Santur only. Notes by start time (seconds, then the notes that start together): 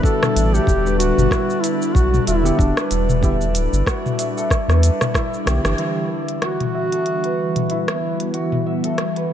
Already playing: E4 A4 B4 E5
0.05 F#4
0.36 E5
0.54 A4
0.86 B4
1.32 E4
1.96 F#4
2.27 E5
2.45 A4
2.78 B4
3.24 E4
3.87 F#4
4.19 E5
4.37 A4
4.69 B4
5.15 E4
5.79 E4
6.42 F#4
6.74 E5
6.92 A4
7.24 B4
7.71 E4
8.34 F#4
8.66 E5
8.84 A4
9.16 B4